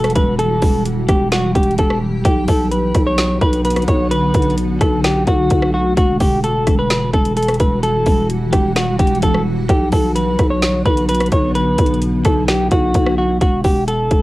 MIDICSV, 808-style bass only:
0, 0, Header, 1, 2, 480
1, 0, Start_track
1, 0, Tempo, 465116
1, 402, Time_signature, 4, 2, 24, 8
1, 14676, End_track
2, 0, Start_track
2, 0, Title_t, "808-style bass"
2, 0, Program_c, 0, 38
2, 0, Note_on_c, 0, 28, 105
2, 143, Note_off_c, 0, 28, 0
2, 163, Note_on_c, 0, 28, 106
2, 623, Note_off_c, 0, 28, 0
2, 643, Note_on_c, 0, 28, 104
2, 1103, Note_off_c, 0, 28, 0
2, 1123, Note_on_c, 0, 28, 105
2, 1583, Note_off_c, 0, 28, 0
2, 1601, Note_on_c, 0, 28, 106
2, 1832, Note_off_c, 0, 28, 0
2, 1843, Note_on_c, 0, 28, 110
2, 2304, Note_off_c, 0, 28, 0
2, 2322, Note_on_c, 0, 35, 112
2, 2552, Note_off_c, 0, 35, 0
2, 2562, Note_on_c, 0, 35, 106
2, 3023, Note_off_c, 0, 35, 0
2, 3041, Note_on_c, 0, 35, 106
2, 3503, Note_off_c, 0, 35, 0
2, 3522, Note_on_c, 0, 35, 110
2, 3983, Note_off_c, 0, 35, 0
2, 4004, Note_on_c, 0, 35, 107
2, 4464, Note_off_c, 0, 35, 0
2, 4483, Note_on_c, 0, 35, 102
2, 4943, Note_off_c, 0, 35, 0
2, 4963, Note_on_c, 0, 35, 103
2, 5423, Note_off_c, 0, 35, 0
2, 5442, Note_on_c, 0, 35, 105
2, 5672, Note_off_c, 0, 35, 0
2, 5683, Note_on_c, 0, 35, 112
2, 6144, Note_off_c, 0, 35, 0
2, 6163, Note_on_c, 0, 28, 116
2, 6393, Note_off_c, 0, 28, 0
2, 6404, Note_on_c, 0, 28, 100
2, 6864, Note_off_c, 0, 28, 0
2, 6883, Note_on_c, 0, 28, 107
2, 7344, Note_off_c, 0, 28, 0
2, 7362, Note_on_c, 0, 28, 109
2, 7823, Note_off_c, 0, 28, 0
2, 7843, Note_on_c, 0, 28, 102
2, 8304, Note_off_c, 0, 28, 0
2, 8322, Note_on_c, 0, 28, 106
2, 8783, Note_off_c, 0, 28, 0
2, 8802, Note_on_c, 0, 28, 107
2, 9263, Note_off_c, 0, 28, 0
2, 9282, Note_on_c, 0, 28, 106
2, 9512, Note_off_c, 0, 28, 0
2, 9523, Note_on_c, 0, 28, 113
2, 9984, Note_off_c, 0, 28, 0
2, 10002, Note_on_c, 0, 35, 114
2, 10232, Note_off_c, 0, 35, 0
2, 10243, Note_on_c, 0, 35, 102
2, 10703, Note_off_c, 0, 35, 0
2, 10722, Note_on_c, 0, 35, 105
2, 11183, Note_off_c, 0, 35, 0
2, 11202, Note_on_c, 0, 35, 111
2, 11663, Note_off_c, 0, 35, 0
2, 11682, Note_on_c, 0, 35, 104
2, 12143, Note_off_c, 0, 35, 0
2, 12162, Note_on_c, 0, 35, 107
2, 12623, Note_off_c, 0, 35, 0
2, 12642, Note_on_c, 0, 35, 105
2, 13103, Note_off_c, 0, 35, 0
2, 13121, Note_on_c, 0, 35, 108
2, 13352, Note_off_c, 0, 35, 0
2, 13363, Note_on_c, 0, 35, 109
2, 13823, Note_off_c, 0, 35, 0
2, 13842, Note_on_c, 0, 28, 112
2, 14072, Note_off_c, 0, 28, 0
2, 14083, Note_on_c, 0, 28, 103
2, 14543, Note_off_c, 0, 28, 0
2, 14562, Note_on_c, 0, 28, 105
2, 14676, Note_off_c, 0, 28, 0
2, 14676, End_track
0, 0, End_of_file